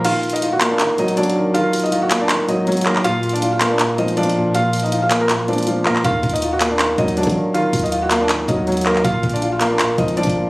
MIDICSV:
0, 0, Header, 1, 5, 480
1, 0, Start_track
1, 0, Key_signature, -6, "minor"
1, 0, Tempo, 375000
1, 59, Time_signature, 4, 2, 24, 8
1, 13437, End_track
2, 0, Start_track
2, 0, Title_t, "Felt piano"
2, 0, Program_c, 0, 0
2, 59, Note_on_c, 0, 77, 107
2, 70, Note_on_c, 0, 65, 81
2, 404, Note_off_c, 0, 77, 0
2, 410, Note_off_c, 0, 65, 0
2, 423, Note_on_c, 0, 75, 78
2, 433, Note_on_c, 0, 63, 61
2, 604, Note_off_c, 0, 75, 0
2, 610, Note_off_c, 0, 63, 0
2, 669, Note_on_c, 0, 78, 75
2, 679, Note_on_c, 0, 66, 57
2, 848, Note_off_c, 0, 78, 0
2, 854, Note_off_c, 0, 66, 0
2, 907, Note_on_c, 0, 74, 68
2, 918, Note_on_c, 0, 62, 55
2, 991, Note_off_c, 0, 74, 0
2, 998, Note_off_c, 0, 62, 0
2, 1264, Note_on_c, 0, 75, 85
2, 1274, Note_on_c, 0, 63, 69
2, 1442, Note_off_c, 0, 75, 0
2, 1448, Note_off_c, 0, 63, 0
2, 1496, Note_on_c, 0, 74, 82
2, 1506, Note_on_c, 0, 62, 72
2, 1949, Note_off_c, 0, 74, 0
2, 1954, Note_off_c, 0, 62, 0
2, 1974, Note_on_c, 0, 77, 95
2, 1985, Note_on_c, 0, 65, 82
2, 2321, Note_off_c, 0, 77, 0
2, 2327, Note_off_c, 0, 65, 0
2, 2348, Note_on_c, 0, 75, 73
2, 2358, Note_on_c, 0, 63, 61
2, 2527, Note_off_c, 0, 75, 0
2, 2533, Note_off_c, 0, 63, 0
2, 2584, Note_on_c, 0, 78, 74
2, 2594, Note_on_c, 0, 66, 57
2, 2765, Note_off_c, 0, 78, 0
2, 2771, Note_off_c, 0, 66, 0
2, 2824, Note_on_c, 0, 74, 76
2, 2834, Note_on_c, 0, 62, 62
2, 2909, Note_off_c, 0, 74, 0
2, 2915, Note_off_c, 0, 62, 0
2, 3181, Note_on_c, 0, 75, 76
2, 3190, Note_on_c, 0, 63, 60
2, 3631, Note_off_c, 0, 75, 0
2, 3636, Note_off_c, 0, 63, 0
2, 3658, Note_on_c, 0, 70, 78
2, 3668, Note_on_c, 0, 58, 59
2, 3838, Note_off_c, 0, 70, 0
2, 3844, Note_off_c, 0, 58, 0
2, 3896, Note_on_c, 0, 77, 113
2, 3907, Note_on_c, 0, 65, 89
2, 4242, Note_off_c, 0, 77, 0
2, 4248, Note_off_c, 0, 65, 0
2, 4264, Note_on_c, 0, 74, 82
2, 4275, Note_on_c, 0, 62, 64
2, 4445, Note_off_c, 0, 74, 0
2, 4452, Note_off_c, 0, 62, 0
2, 4504, Note_on_c, 0, 77, 70
2, 4514, Note_on_c, 0, 65, 55
2, 4685, Note_off_c, 0, 77, 0
2, 4691, Note_off_c, 0, 65, 0
2, 4748, Note_on_c, 0, 74, 70
2, 4759, Note_on_c, 0, 62, 56
2, 4832, Note_off_c, 0, 74, 0
2, 4839, Note_off_c, 0, 62, 0
2, 5096, Note_on_c, 0, 75, 88
2, 5107, Note_on_c, 0, 63, 61
2, 5277, Note_off_c, 0, 75, 0
2, 5284, Note_off_c, 0, 63, 0
2, 5336, Note_on_c, 0, 74, 87
2, 5347, Note_on_c, 0, 62, 70
2, 5789, Note_off_c, 0, 74, 0
2, 5794, Note_off_c, 0, 62, 0
2, 5820, Note_on_c, 0, 77, 104
2, 5829, Note_on_c, 0, 65, 75
2, 6164, Note_off_c, 0, 77, 0
2, 6169, Note_off_c, 0, 65, 0
2, 6185, Note_on_c, 0, 75, 73
2, 6195, Note_on_c, 0, 63, 59
2, 6366, Note_off_c, 0, 75, 0
2, 6372, Note_off_c, 0, 63, 0
2, 6429, Note_on_c, 0, 77, 71
2, 6439, Note_on_c, 0, 65, 55
2, 6608, Note_off_c, 0, 77, 0
2, 6614, Note_off_c, 0, 65, 0
2, 6668, Note_on_c, 0, 70, 78
2, 6677, Note_on_c, 0, 58, 60
2, 6752, Note_off_c, 0, 70, 0
2, 6758, Note_off_c, 0, 58, 0
2, 7018, Note_on_c, 0, 74, 73
2, 7028, Note_on_c, 0, 62, 60
2, 7470, Note_off_c, 0, 74, 0
2, 7475, Note_off_c, 0, 62, 0
2, 7495, Note_on_c, 0, 70, 78
2, 7505, Note_on_c, 0, 58, 56
2, 7677, Note_off_c, 0, 70, 0
2, 7683, Note_off_c, 0, 58, 0
2, 7739, Note_on_c, 0, 77, 109
2, 7750, Note_on_c, 0, 65, 81
2, 8084, Note_off_c, 0, 77, 0
2, 8090, Note_off_c, 0, 65, 0
2, 8104, Note_on_c, 0, 75, 80
2, 8114, Note_on_c, 0, 63, 61
2, 8285, Note_off_c, 0, 75, 0
2, 8291, Note_off_c, 0, 63, 0
2, 8348, Note_on_c, 0, 78, 74
2, 8359, Note_on_c, 0, 66, 56
2, 8527, Note_off_c, 0, 78, 0
2, 8534, Note_off_c, 0, 66, 0
2, 8588, Note_on_c, 0, 74, 67
2, 8599, Note_on_c, 0, 62, 58
2, 8671, Note_off_c, 0, 74, 0
2, 8678, Note_off_c, 0, 62, 0
2, 8941, Note_on_c, 0, 75, 89
2, 8951, Note_on_c, 0, 63, 68
2, 9120, Note_off_c, 0, 75, 0
2, 9127, Note_off_c, 0, 63, 0
2, 9176, Note_on_c, 0, 74, 80
2, 9187, Note_on_c, 0, 62, 69
2, 9628, Note_off_c, 0, 74, 0
2, 9634, Note_off_c, 0, 62, 0
2, 9656, Note_on_c, 0, 77, 94
2, 9666, Note_on_c, 0, 65, 84
2, 10002, Note_off_c, 0, 77, 0
2, 10008, Note_off_c, 0, 65, 0
2, 10028, Note_on_c, 0, 75, 75
2, 10039, Note_on_c, 0, 63, 59
2, 10207, Note_off_c, 0, 75, 0
2, 10214, Note_off_c, 0, 63, 0
2, 10265, Note_on_c, 0, 78, 74
2, 10275, Note_on_c, 0, 66, 55
2, 10445, Note_off_c, 0, 78, 0
2, 10452, Note_off_c, 0, 66, 0
2, 10505, Note_on_c, 0, 74, 75
2, 10515, Note_on_c, 0, 62, 66
2, 10590, Note_off_c, 0, 74, 0
2, 10596, Note_off_c, 0, 62, 0
2, 10862, Note_on_c, 0, 75, 74
2, 10872, Note_on_c, 0, 63, 59
2, 11311, Note_off_c, 0, 75, 0
2, 11317, Note_off_c, 0, 63, 0
2, 11340, Note_on_c, 0, 70, 79
2, 11349, Note_on_c, 0, 58, 60
2, 11520, Note_off_c, 0, 70, 0
2, 11525, Note_off_c, 0, 58, 0
2, 11577, Note_on_c, 0, 77, 115
2, 11587, Note_on_c, 0, 65, 85
2, 11923, Note_off_c, 0, 77, 0
2, 11928, Note_off_c, 0, 65, 0
2, 11946, Note_on_c, 0, 74, 82
2, 11955, Note_on_c, 0, 62, 63
2, 12126, Note_off_c, 0, 74, 0
2, 12132, Note_off_c, 0, 62, 0
2, 12185, Note_on_c, 0, 77, 71
2, 12195, Note_on_c, 0, 65, 55
2, 12366, Note_off_c, 0, 77, 0
2, 12372, Note_off_c, 0, 65, 0
2, 12433, Note_on_c, 0, 74, 69
2, 12443, Note_on_c, 0, 62, 55
2, 12515, Note_off_c, 0, 74, 0
2, 12521, Note_off_c, 0, 62, 0
2, 12780, Note_on_c, 0, 75, 86
2, 12790, Note_on_c, 0, 63, 61
2, 12959, Note_off_c, 0, 75, 0
2, 12966, Note_off_c, 0, 63, 0
2, 13017, Note_on_c, 0, 74, 87
2, 13028, Note_on_c, 0, 62, 69
2, 13437, Note_off_c, 0, 62, 0
2, 13437, Note_off_c, 0, 74, 0
2, 13437, End_track
3, 0, Start_track
3, 0, Title_t, "Grand piano"
3, 0, Program_c, 1, 0
3, 0, Control_c, 1, 64, 127
3, 61, Note_on_c, 1, 51, 88
3, 75, Control_c, 1, 64, 0
3, 275, Control_c, 1, 64, 127
3, 542, Note_on_c, 1, 65, 81
3, 776, Note_on_c, 1, 58, 95
3, 1000, Note_off_c, 1, 51, 0
3, 1020, Note_on_c, 1, 51, 71
3, 1257, Note_on_c, 1, 54, 75
3, 1480, Note_off_c, 1, 54, 0
3, 1500, Note_on_c, 1, 54, 85
3, 1719, Note_off_c, 1, 51, 0
3, 1738, Note_on_c, 1, 51, 76
3, 1740, Note_off_c, 1, 65, 0
3, 1955, Note_off_c, 1, 51, 0
3, 1974, Note_on_c, 1, 51, 98
3, 1977, Note_off_c, 1, 58, 0
3, 2453, Note_on_c, 1, 65, 87
3, 2697, Note_on_c, 1, 58, 92
3, 2699, Note_off_c, 1, 54, 0
3, 2921, Note_off_c, 1, 51, 0
3, 2940, Note_on_c, 1, 51, 72
3, 3177, Note_on_c, 1, 54, 73
3, 3402, Note_off_c, 1, 54, 0
3, 3422, Note_on_c, 1, 54, 94
3, 3639, Note_off_c, 1, 51, 0
3, 3656, Note_off_c, 1, 65, 0
3, 3658, Note_on_c, 1, 51, 78
3, 3897, Note_on_c, 1, 46, 90
3, 3898, Note_off_c, 1, 51, 0
3, 3898, Note_off_c, 1, 58, 0
3, 3900, Note_off_c, 1, 54, 0
3, 3918, Control_c, 1, 64, 0
3, 4111, Control_c, 1, 64, 127
3, 4380, Note_on_c, 1, 65, 85
3, 4615, Note_on_c, 1, 58, 100
3, 4836, Note_off_c, 1, 46, 0
3, 4855, Note_on_c, 1, 46, 74
3, 5098, Note_on_c, 1, 53, 83
3, 5322, Note_off_c, 1, 53, 0
3, 5341, Note_on_c, 1, 53, 93
3, 5556, Note_off_c, 1, 46, 0
3, 5576, Note_on_c, 1, 46, 74
3, 5579, Note_off_c, 1, 65, 0
3, 5800, Note_off_c, 1, 46, 0
3, 5817, Note_off_c, 1, 58, 0
3, 5819, Note_on_c, 1, 46, 86
3, 6297, Note_on_c, 1, 65, 80
3, 6539, Note_on_c, 1, 58, 93
3, 6540, Note_off_c, 1, 53, 0
3, 6757, Note_off_c, 1, 46, 0
3, 6777, Note_on_c, 1, 46, 77
3, 7021, Note_on_c, 1, 53, 76
3, 7239, Note_off_c, 1, 53, 0
3, 7259, Note_on_c, 1, 53, 85
3, 7480, Note_off_c, 1, 46, 0
3, 7498, Note_off_c, 1, 65, 0
3, 7500, Note_on_c, 1, 46, 72
3, 7739, Note_off_c, 1, 46, 0
3, 7739, Note_off_c, 1, 53, 0
3, 7739, Note_off_c, 1, 58, 0
3, 7741, Note_on_c, 1, 51, 85
3, 7755, Control_c, 1, 64, 0
3, 8011, Control_c, 1, 64, 127
3, 8221, Note_on_c, 1, 65, 81
3, 8455, Note_on_c, 1, 58, 91
3, 8680, Note_off_c, 1, 51, 0
3, 8699, Note_on_c, 1, 51, 74
3, 8936, Note_on_c, 1, 54, 77
3, 9161, Note_off_c, 1, 54, 0
3, 9181, Note_on_c, 1, 54, 85
3, 9399, Note_off_c, 1, 51, 0
3, 9418, Note_on_c, 1, 51, 75
3, 9420, Note_off_c, 1, 65, 0
3, 9634, Note_off_c, 1, 51, 0
3, 9654, Note_on_c, 1, 51, 94
3, 9657, Note_off_c, 1, 58, 0
3, 10134, Note_on_c, 1, 65, 87
3, 10379, Note_on_c, 1, 58, 93
3, 10380, Note_off_c, 1, 54, 0
3, 10605, Note_off_c, 1, 51, 0
3, 10624, Note_on_c, 1, 51, 76
3, 10860, Note_on_c, 1, 54, 75
3, 11083, Note_off_c, 1, 54, 0
3, 11102, Note_on_c, 1, 54, 97
3, 11320, Note_off_c, 1, 51, 0
3, 11336, Note_off_c, 1, 65, 0
3, 11339, Note_on_c, 1, 51, 79
3, 11579, Note_off_c, 1, 51, 0
3, 11579, Note_off_c, 1, 58, 0
3, 11580, Note_off_c, 1, 54, 0
3, 11581, Note_on_c, 1, 46, 95
3, 11596, Control_c, 1, 64, 0
3, 11826, Control_c, 1, 64, 127
3, 12060, Note_on_c, 1, 65, 89
3, 12294, Note_on_c, 1, 58, 101
3, 12516, Note_off_c, 1, 46, 0
3, 12536, Note_on_c, 1, 46, 73
3, 12778, Note_on_c, 1, 53, 81
3, 13001, Note_off_c, 1, 53, 0
3, 13020, Note_on_c, 1, 53, 88
3, 13237, Note_off_c, 1, 46, 0
3, 13256, Note_on_c, 1, 46, 75
3, 13259, Note_off_c, 1, 65, 0
3, 13437, Note_off_c, 1, 46, 0
3, 13437, Note_off_c, 1, 53, 0
3, 13437, Note_off_c, 1, 58, 0
3, 13437, End_track
4, 0, Start_track
4, 0, Title_t, "808-style bass"
4, 0, Program_c, 2, 38
4, 7737, Note_on_c, 2, 39, 108
4, 7968, Note_off_c, 2, 39, 0
4, 7977, Note_on_c, 2, 39, 110
4, 8899, Note_off_c, 2, 39, 0
4, 8937, Note_on_c, 2, 39, 108
4, 9290, Note_off_c, 2, 39, 0
4, 9305, Note_on_c, 2, 51, 100
4, 9874, Note_off_c, 2, 51, 0
4, 9897, Note_on_c, 2, 39, 109
4, 10819, Note_off_c, 2, 39, 0
4, 10857, Note_on_c, 2, 39, 104
4, 11549, Note_off_c, 2, 39, 0
4, 11578, Note_on_c, 2, 34, 111
4, 11808, Note_off_c, 2, 34, 0
4, 11818, Note_on_c, 2, 34, 107
4, 12740, Note_off_c, 2, 34, 0
4, 12777, Note_on_c, 2, 34, 105
4, 13130, Note_off_c, 2, 34, 0
4, 13145, Note_on_c, 2, 34, 102
4, 13437, Note_off_c, 2, 34, 0
4, 13437, End_track
5, 0, Start_track
5, 0, Title_t, "Drums"
5, 58, Note_on_c, 9, 49, 89
5, 59, Note_on_c, 9, 42, 76
5, 186, Note_off_c, 9, 49, 0
5, 187, Note_off_c, 9, 42, 0
5, 298, Note_on_c, 9, 42, 48
5, 378, Note_off_c, 9, 42, 0
5, 378, Note_on_c, 9, 42, 67
5, 458, Note_off_c, 9, 42, 0
5, 458, Note_on_c, 9, 42, 81
5, 540, Note_off_c, 9, 42, 0
5, 540, Note_on_c, 9, 42, 93
5, 668, Note_off_c, 9, 42, 0
5, 778, Note_on_c, 9, 39, 109
5, 778, Note_on_c, 9, 42, 93
5, 906, Note_off_c, 9, 39, 0
5, 906, Note_off_c, 9, 42, 0
5, 1016, Note_on_c, 9, 42, 85
5, 1018, Note_on_c, 9, 39, 109
5, 1144, Note_off_c, 9, 42, 0
5, 1146, Note_off_c, 9, 39, 0
5, 1258, Note_on_c, 9, 42, 61
5, 1385, Note_off_c, 9, 42, 0
5, 1385, Note_on_c, 9, 42, 57
5, 1498, Note_off_c, 9, 42, 0
5, 1498, Note_on_c, 9, 42, 69
5, 1579, Note_off_c, 9, 42, 0
5, 1579, Note_on_c, 9, 42, 69
5, 1658, Note_off_c, 9, 42, 0
5, 1658, Note_on_c, 9, 42, 68
5, 1786, Note_off_c, 9, 42, 0
5, 1979, Note_on_c, 9, 42, 75
5, 2107, Note_off_c, 9, 42, 0
5, 2219, Note_on_c, 9, 42, 79
5, 2222, Note_on_c, 9, 46, 84
5, 2298, Note_off_c, 9, 42, 0
5, 2298, Note_on_c, 9, 42, 63
5, 2350, Note_off_c, 9, 46, 0
5, 2378, Note_off_c, 9, 42, 0
5, 2378, Note_on_c, 9, 42, 48
5, 2459, Note_off_c, 9, 42, 0
5, 2459, Note_on_c, 9, 42, 92
5, 2587, Note_off_c, 9, 42, 0
5, 2697, Note_on_c, 9, 39, 106
5, 2697, Note_on_c, 9, 42, 97
5, 2825, Note_off_c, 9, 39, 0
5, 2825, Note_off_c, 9, 42, 0
5, 2934, Note_on_c, 9, 42, 82
5, 2936, Note_on_c, 9, 39, 111
5, 3062, Note_off_c, 9, 42, 0
5, 3064, Note_off_c, 9, 39, 0
5, 3181, Note_on_c, 9, 42, 67
5, 3309, Note_off_c, 9, 42, 0
5, 3417, Note_on_c, 9, 42, 51
5, 3480, Note_off_c, 9, 42, 0
5, 3480, Note_on_c, 9, 42, 64
5, 3545, Note_off_c, 9, 42, 0
5, 3545, Note_on_c, 9, 42, 73
5, 3601, Note_off_c, 9, 42, 0
5, 3601, Note_on_c, 9, 42, 83
5, 3657, Note_on_c, 9, 39, 91
5, 3729, Note_off_c, 9, 42, 0
5, 3785, Note_off_c, 9, 39, 0
5, 3785, Note_on_c, 9, 39, 70
5, 3897, Note_on_c, 9, 42, 76
5, 3913, Note_off_c, 9, 39, 0
5, 4025, Note_off_c, 9, 42, 0
5, 4136, Note_on_c, 9, 42, 49
5, 4216, Note_off_c, 9, 42, 0
5, 4216, Note_on_c, 9, 42, 65
5, 4296, Note_off_c, 9, 42, 0
5, 4296, Note_on_c, 9, 42, 83
5, 4379, Note_off_c, 9, 42, 0
5, 4379, Note_on_c, 9, 42, 93
5, 4507, Note_off_c, 9, 42, 0
5, 4617, Note_on_c, 9, 39, 104
5, 4617, Note_on_c, 9, 42, 90
5, 4745, Note_off_c, 9, 39, 0
5, 4745, Note_off_c, 9, 42, 0
5, 4854, Note_on_c, 9, 42, 83
5, 4856, Note_on_c, 9, 39, 112
5, 4982, Note_off_c, 9, 42, 0
5, 4984, Note_off_c, 9, 39, 0
5, 5098, Note_on_c, 9, 42, 57
5, 5225, Note_off_c, 9, 42, 0
5, 5225, Note_on_c, 9, 42, 57
5, 5338, Note_off_c, 9, 42, 0
5, 5338, Note_on_c, 9, 42, 69
5, 5417, Note_off_c, 9, 42, 0
5, 5417, Note_on_c, 9, 42, 71
5, 5497, Note_off_c, 9, 42, 0
5, 5497, Note_on_c, 9, 42, 65
5, 5625, Note_off_c, 9, 42, 0
5, 5818, Note_on_c, 9, 42, 75
5, 5946, Note_off_c, 9, 42, 0
5, 6058, Note_on_c, 9, 42, 82
5, 6062, Note_on_c, 9, 46, 86
5, 6138, Note_off_c, 9, 42, 0
5, 6138, Note_on_c, 9, 42, 62
5, 6190, Note_off_c, 9, 46, 0
5, 6218, Note_off_c, 9, 42, 0
5, 6218, Note_on_c, 9, 42, 46
5, 6299, Note_off_c, 9, 42, 0
5, 6299, Note_on_c, 9, 42, 90
5, 6427, Note_off_c, 9, 42, 0
5, 6537, Note_on_c, 9, 39, 106
5, 6537, Note_on_c, 9, 42, 93
5, 6665, Note_off_c, 9, 39, 0
5, 6665, Note_off_c, 9, 42, 0
5, 6774, Note_on_c, 9, 42, 87
5, 6776, Note_on_c, 9, 39, 108
5, 6902, Note_off_c, 9, 42, 0
5, 6904, Note_off_c, 9, 39, 0
5, 7017, Note_on_c, 9, 42, 42
5, 7080, Note_off_c, 9, 42, 0
5, 7080, Note_on_c, 9, 42, 53
5, 7144, Note_off_c, 9, 42, 0
5, 7144, Note_on_c, 9, 42, 63
5, 7201, Note_off_c, 9, 42, 0
5, 7201, Note_on_c, 9, 42, 70
5, 7255, Note_off_c, 9, 42, 0
5, 7255, Note_on_c, 9, 42, 85
5, 7383, Note_off_c, 9, 42, 0
5, 7496, Note_on_c, 9, 39, 91
5, 7624, Note_off_c, 9, 39, 0
5, 7625, Note_on_c, 9, 39, 70
5, 7737, Note_on_c, 9, 42, 75
5, 7738, Note_on_c, 9, 36, 112
5, 7753, Note_off_c, 9, 39, 0
5, 7865, Note_off_c, 9, 42, 0
5, 7866, Note_off_c, 9, 36, 0
5, 7977, Note_on_c, 9, 42, 49
5, 7978, Note_on_c, 9, 36, 103
5, 8057, Note_off_c, 9, 42, 0
5, 8057, Note_on_c, 9, 42, 64
5, 8106, Note_off_c, 9, 36, 0
5, 8136, Note_off_c, 9, 42, 0
5, 8136, Note_on_c, 9, 42, 80
5, 8218, Note_off_c, 9, 42, 0
5, 8218, Note_on_c, 9, 42, 88
5, 8346, Note_off_c, 9, 42, 0
5, 8456, Note_on_c, 9, 39, 107
5, 8456, Note_on_c, 9, 42, 94
5, 8584, Note_off_c, 9, 39, 0
5, 8584, Note_off_c, 9, 42, 0
5, 8694, Note_on_c, 9, 42, 85
5, 8696, Note_on_c, 9, 39, 109
5, 8822, Note_off_c, 9, 42, 0
5, 8824, Note_off_c, 9, 39, 0
5, 8936, Note_on_c, 9, 42, 56
5, 8937, Note_on_c, 9, 36, 102
5, 9064, Note_off_c, 9, 42, 0
5, 9064, Note_on_c, 9, 42, 60
5, 9065, Note_off_c, 9, 36, 0
5, 9177, Note_off_c, 9, 42, 0
5, 9177, Note_on_c, 9, 42, 69
5, 9258, Note_off_c, 9, 42, 0
5, 9258, Note_on_c, 9, 42, 71
5, 9305, Note_on_c, 9, 36, 91
5, 9338, Note_off_c, 9, 42, 0
5, 9338, Note_on_c, 9, 42, 66
5, 9433, Note_off_c, 9, 36, 0
5, 9466, Note_off_c, 9, 42, 0
5, 9658, Note_on_c, 9, 42, 76
5, 9786, Note_off_c, 9, 42, 0
5, 9897, Note_on_c, 9, 42, 78
5, 9898, Note_on_c, 9, 36, 99
5, 9901, Note_on_c, 9, 46, 86
5, 9977, Note_off_c, 9, 42, 0
5, 9977, Note_on_c, 9, 42, 65
5, 10026, Note_off_c, 9, 36, 0
5, 10029, Note_off_c, 9, 46, 0
5, 10057, Note_off_c, 9, 42, 0
5, 10057, Note_on_c, 9, 42, 46
5, 10139, Note_off_c, 9, 42, 0
5, 10139, Note_on_c, 9, 42, 91
5, 10267, Note_off_c, 9, 42, 0
5, 10377, Note_on_c, 9, 39, 107
5, 10377, Note_on_c, 9, 42, 93
5, 10505, Note_off_c, 9, 39, 0
5, 10505, Note_off_c, 9, 42, 0
5, 10615, Note_on_c, 9, 42, 87
5, 10617, Note_on_c, 9, 39, 110
5, 10743, Note_off_c, 9, 42, 0
5, 10745, Note_off_c, 9, 39, 0
5, 10857, Note_on_c, 9, 36, 99
5, 10862, Note_on_c, 9, 42, 69
5, 10985, Note_off_c, 9, 36, 0
5, 10990, Note_off_c, 9, 42, 0
5, 11098, Note_on_c, 9, 42, 51
5, 11162, Note_off_c, 9, 42, 0
5, 11162, Note_on_c, 9, 42, 63
5, 11225, Note_off_c, 9, 42, 0
5, 11225, Note_on_c, 9, 42, 71
5, 11281, Note_off_c, 9, 42, 0
5, 11281, Note_on_c, 9, 42, 83
5, 11337, Note_on_c, 9, 39, 92
5, 11409, Note_off_c, 9, 42, 0
5, 11465, Note_off_c, 9, 39, 0
5, 11465, Note_on_c, 9, 39, 72
5, 11578, Note_on_c, 9, 36, 111
5, 11578, Note_on_c, 9, 42, 77
5, 11593, Note_off_c, 9, 39, 0
5, 11706, Note_off_c, 9, 36, 0
5, 11706, Note_off_c, 9, 42, 0
5, 11817, Note_on_c, 9, 42, 49
5, 11818, Note_on_c, 9, 36, 100
5, 11898, Note_off_c, 9, 42, 0
5, 11898, Note_on_c, 9, 42, 65
5, 11946, Note_off_c, 9, 36, 0
5, 11977, Note_off_c, 9, 42, 0
5, 11977, Note_on_c, 9, 42, 80
5, 12058, Note_off_c, 9, 42, 0
5, 12058, Note_on_c, 9, 42, 90
5, 12186, Note_off_c, 9, 42, 0
5, 12297, Note_on_c, 9, 39, 105
5, 12297, Note_on_c, 9, 42, 93
5, 12425, Note_off_c, 9, 39, 0
5, 12425, Note_off_c, 9, 42, 0
5, 12535, Note_on_c, 9, 42, 88
5, 12537, Note_on_c, 9, 39, 114
5, 12663, Note_off_c, 9, 42, 0
5, 12665, Note_off_c, 9, 39, 0
5, 12777, Note_on_c, 9, 36, 104
5, 12777, Note_on_c, 9, 42, 59
5, 12905, Note_off_c, 9, 36, 0
5, 12905, Note_off_c, 9, 42, 0
5, 12905, Note_on_c, 9, 42, 57
5, 13019, Note_off_c, 9, 42, 0
5, 13019, Note_on_c, 9, 42, 68
5, 13098, Note_off_c, 9, 42, 0
5, 13098, Note_on_c, 9, 42, 68
5, 13145, Note_on_c, 9, 36, 86
5, 13178, Note_off_c, 9, 42, 0
5, 13178, Note_on_c, 9, 42, 67
5, 13273, Note_off_c, 9, 36, 0
5, 13306, Note_off_c, 9, 42, 0
5, 13437, End_track
0, 0, End_of_file